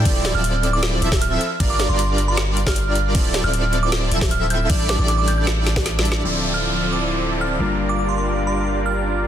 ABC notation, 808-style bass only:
X:1
M:4/4
L:1/16
Q:1/4=155
K:Dm
V:1 name="808-style bass" clef=bass
D,,,3 D,,,6- D,,, D,,,4 z2 | G,,,3 G,,,12- G,,, | D,,,3 D,,,6- D,,, D,,,6 | A,,,3 A,,,12- A,,, |
D,,,12- D,,,2 G,,,2- | G,,,16 |]